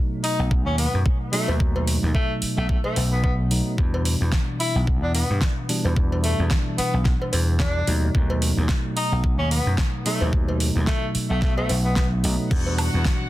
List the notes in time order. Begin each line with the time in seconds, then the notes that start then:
Already playing: B2 F#3 A3 D#4
0.24 D#4, open hi-hat
0.39 B1
0.51 kick
0.66 D#2 C#4
0.78 B3, open hi-hat
0.94 F#2
1.06 kick
1.32 B2 F#3 A3 D#4, open hi-hat
1.48 D#2, cowbell
1.59 B2 A3 D#4, kick
1.76 cowbell
1.87 open hi-hat
2.03 D#2
2.15 A3, kick
2.42 muted slap bass stroke, open hi-hat
2.57 B1 A3
2.69 A3, kick
2.84 A3, cowbell
2.96 B1, open hi-hat, cowbell
3.12 B3
3.24 B3, kick
3.50 B2 F#3 A3 D#4, open hi-hat
3.77 E2 B2 E3 D4, kick
3.94 cowbell
4.05 open hi-hat
4.21 E2
4.32 kick, snare
4.60 E4, open hi-hat
4.75 B1
4.87 kick
5.03 E2 D4
5.15 B3, open hi-hat
5.30 G2
5.41 kick, snare
5.69 B2 E3 G3 D4, open hi-hat
5.85 E2, cowbell
5.96 B2 E3 G3 D4, kick
6.12 cowbell
6.24 A3, open hi-hat
6.39 E2
6.51 kick, snare
6.78 B3, muted slap bass stroke, open hi-hat
6.94 B1
7.05 kick, snare
7.22 cowbell
7.33 E2, open hi-hat, cowbell
7.60 D4, kick, snare
7.87 D#2 B2 F#3 A3 D#4, open hi-hat
8.14 D#2 B2 F#3 D#4, kick
8.30 cowbell
8.42 open hi-hat
8.57 D#2
8.69 kick, snare
8.97 D#4, open hi-hat
9.12 B1
9.24 kick
9.39 D#2 C#4
9.51 B3, open hi-hat
9.66 F#2
9.78 kick, snare
10.05 B2 F#3 A3 D#4, open hi-hat
10.21 D#2, cowbell
10.33 A3 D#4, kick
10.48 cowbell
10.60 open hi-hat
10.76 D#2
10.87 A3, kick, snare
11.15 muted slap bass stroke, open hi-hat
11.30 B1 A3
11.42 A3, kick, snare
11.57 A3, cowbell
11.69 B1, open hi-hat, cowbell
11.85 B3
11.96 B3, kick, snare
12.23 B1 B2 F#3 A3 D#4, open hi-hat
12.50 E2 B2 E3 D4 F#4 F#5, kick, crash
12.67 cowbell
12.78 open hi-hat, high woodblock
12.94 E2
13.05 kick, snare